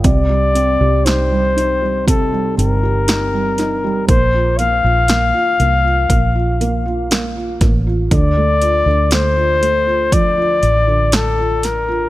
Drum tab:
HH |xxxxxxxx|xxxxxxxx|xxxxxxxx|
SD |--o---oo|--o---oo|--o---oo|
BD |o---o---|o---o--o|o---o---|